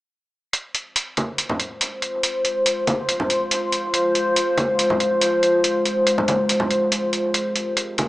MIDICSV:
0, 0, Header, 1, 3, 480
1, 0, Start_track
1, 0, Key_signature, -4, "minor"
1, 0, Tempo, 425532
1, 602, Time_signature, 4, 2, 24, 8
1, 9119, End_track
2, 0, Start_track
2, 0, Title_t, "Ambient pad"
2, 0, Program_c, 0, 92
2, 599, Note_on_c, 0, 65, 75
2, 600, Note_on_c, 0, 72, 88
2, 601, Note_on_c, 0, 56, 81
2, 8236, Note_off_c, 0, 65, 0
2, 8261, Note_off_c, 0, 72, 0
2, 8281, Note_on_c, 0, 70, 91
2, 8282, Note_on_c, 0, 67, 77
2, 9119, Note_off_c, 0, 56, 0
2, 9119, Note_off_c, 0, 67, 0
2, 9119, Note_off_c, 0, 70, 0
2, 9119, End_track
3, 0, Start_track
3, 0, Title_t, "Drums"
3, 601, Note_on_c, 9, 42, 71
3, 714, Note_off_c, 9, 42, 0
3, 841, Note_on_c, 9, 42, 47
3, 954, Note_off_c, 9, 42, 0
3, 1082, Note_on_c, 9, 42, 77
3, 1194, Note_off_c, 9, 42, 0
3, 1321, Note_on_c, 9, 42, 47
3, 1328, Note_on_c, 9, 63, 80
3, 1434, Note_off_c, 9, 42, 0
3, 1440, Note_off_c, 9, 63, 0
3, 1560, Note_on_c, 9, 42, 73
3, 1673, Note_off_c, 9, 42, 0
3, 1686, Note_on_c, 9, 64, 79
3, 1799, Note_off_c, 9, 64, 0
3, 1800, Note_on_c, 9, 42, 51
3, 1913, Note_off_c, 9, 42, 0
3, 2041, Note_on_c, 9, 42, 74
3, 2154, Note_off_c, 9, 42, 0
3, 2281, Note_on_c, 9, 42, 48
3, 2394, Note_off_c, 9, 42, 0
3, 2520, Note_on_c, 9, 42, 77
3, 2633, Note_off_c, 9, 42, 0
3, 2761, Note_on_c, 9, 42, 51
3, 2873, Note_off_c, 9, 42, 0
3, 3000, Note_on_c, 9, 42, 78
3, 3112, Note_off_c, 9, 42, 0
3, 3242, Note_on_c, 9, 42, 49
3, 3243, Note_on_c, 9, 63, 86
3, 3354, Note_off_c, 9, 42, 0
3, 3356, Note_off_c, 9, 63, 0
3, 3482, Note_on_c, 9, 42, 77
3, 3595, Note_off_c, 9, 42, 0
3, 3607, Note_on_c, 9, 64, 69
3, 3720, Note_off_c, 9, 64, 0
3, 3722, Note_on_c, 9, 42, 53
3, 3835, Note_off_c, 9, 42, 0
3, 3962, Note_on_c, 9, 42, 77
3, 4075, Note_off_c, 9, 42, 0
3, 4201, Note_on_c, 9, 42, 52
3, 4314, Note_off_c, 9, 42, 0
3, 4442, Note_on_c, 9, 42, 72
3, 4555, Note_off_c, 9, 42, 0
3, 4683, Note_on_c, 9, 42, 46
3, 4796, Note_off_c, 9, 42, 0
3, 4922, Note_on_c, 9, 42, 74
3, 5035, Note_off_c, 9, 42, 0
3, 5161, Note_on_c, 9, 63, 82
3, 5162, Note_on_c, 9, 42, 49
3, 5274, Note_off_c, 9, 63, 0
3, 5275, Note_off_c, 9, 42, 0
3, 5403, Note_on_c, 9, 42, 74
3, 5516, Note_off_c, 9, 42, 0
3, 5530, Note_on_c, 9, 64, 70
3, 5643, Note_off_c, 9, 64, 0
3, 5643, Note_on_c, 9, 42, 50
3, 5756, Note_off_c, 9, 42, 0
3, 5882, Note_on_c, 9, 42, 76
3, 5995, Note_off_c, 9, 42, 0
3, 6123, Note_on_c, 9, 42, 50
3, 6236, Note_off_c, 9, 42, 0
3, 6362, Note_on_c, 9, 42, 73
3, 6475, Note_off_c, 9, 42, 0
3, 6604, Note_on_c, 9, 42, 47
3, 6717, Note_off_c, 9, 42, 0
3, 6844, Note_on_c, 9, 42, 76
3, 6956, Note_off_c, 9, 42, 0
3, 6972, Note_on_c, 9, 64, 77
3, 7084, Note_off_c, 9, 64, 0
3, 7084, Note_on_c, 9, 42, 47
3, 7088, Note_on_c, 9, 63, 80
3, 7197, Note_off_c, 9, 42, 0
3, 7201, Note_off_c, 9, 63, 0
3, 7324, Note_on_c, 9, 42, 73
3, 7437, Note_off_c, 9, 42, 0
3, 7443, Note_on_c, 9, 64, 72
3, 7556, Note_off_c, 9, 64, 0
3, 7564, Note_on_c, 9, 42, 47
3, 7676, Note_off_c, 9, 42, 0
3, 7804, Note_on_c, 9, 42, 75
3, 7917, Note_off_c, 9, 42, 0
3, 8042, Note_on_c, 9, 42, 48
3, 8155, Note_off_c, 9, 42, 0
3, 8282, Note_on_c, 9, 42, 71
3, 8395, Note_off_c, 9, 42, 0
3, 8523, Note_on_c, 9, 42, 47
3, 8636, Note_off_c, 9, 42, 0
3, 8762, Note_on_c, 9, 42, 71
3, 8875, Note_off_c, 9, 42, 0
3, 9002, Note_on_c, 9, 42, 47
3, 9011, Note_on_c, 9, 63, 85
3, 9115, Note_off_c, 9, 42, 0
3, 9119, Note_off_c, 9, 63, 0
3, 9119, End_track
0, 0, End_of_file